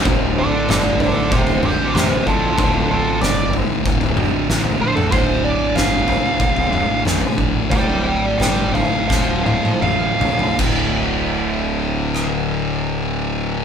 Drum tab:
CC |----------------|----------------|----------------|----------------|
SD |----o-------o---|----o-------o---|----o-------o---|----o---o-------|
T1 |----------------|----------------|----------------|----------oo----|
T2 |----------o-o---|----------o----o|----------o-o---|------------o---|
FT |o---o-o--o---o--|o---o-o--o---o--|o---o-o--o---o--|o---o-o-------oo|
BD |o-------o-----o-|o-------o-------|o-------o-----o-|o-------o-------|

CC |x---------------|
SD |--------r-------|
T1 |----------------|
T2 |----------------|
FT |----------------|
BD |o---------------|